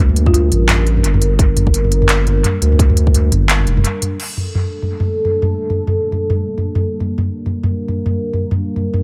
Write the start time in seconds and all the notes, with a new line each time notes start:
Already playing: D2 G3 A#3 D4 A#4
0.09 mid tom
0.16 closed hi-hat
0.26 F4, kick, mid tom
0.34 F4, closed hi-hat
0.52 A1, closed hi-hat, mid tom
0.69 clap, closed hi-hat, mid tom
0.87 closed hi-hat
0.97 mid tom
1.04 G1, closed hi-hat
1.14 mid tom
1.22 closed hi-hat
1.39 G1, kick, closed hi-hat, mid tom
1.57 closed hi-hat, mid tom
1.67 kick
1.74 closed hi-hat
1.84 mid tom
1.92 closed hi-hat
2.02 mid tom
2.09 clap, closed hi-hat
2.27 closed hi-hat, mid tom
2.44 closed hi-hat, mid tom
2.62 D2, closed hi-hat
2.72 mid tom
2.79 kick, closed hi-hat
2.90 mid tom
2.97 closed hi-hat
3.07 kick
3.14 closed hi-hat, mid tom
3.32 G1, closed hi-hat, mid tom
3.49 clap, closed hi-hat
3.60 mid tom
3.67 F1, closed hi-hat
3.77 mid tom
3.85 closed hi-hat
4.02 closed hi-hat, mid tom
4.19 G3 A#3 D4 A4, crash
4.37 mid tom
4.55 mid tom
4.82 mid tom
5.00 mid tom
5.25 mid tom
5.42 mid tom
5.70 mid tom
5.87 mid tom
6.12 mid tom
6.30 mid tom
6.58 mid tom
6.75 mid tom
7.00 A#4, mid tom
7.18 mid tom
7.46 mid tom
7.63 mid tom
7.88 mid tom
8.06 mid tom
8.34 mid tom
8.51 mid tom
8.76 mid tom
8.94 mid tom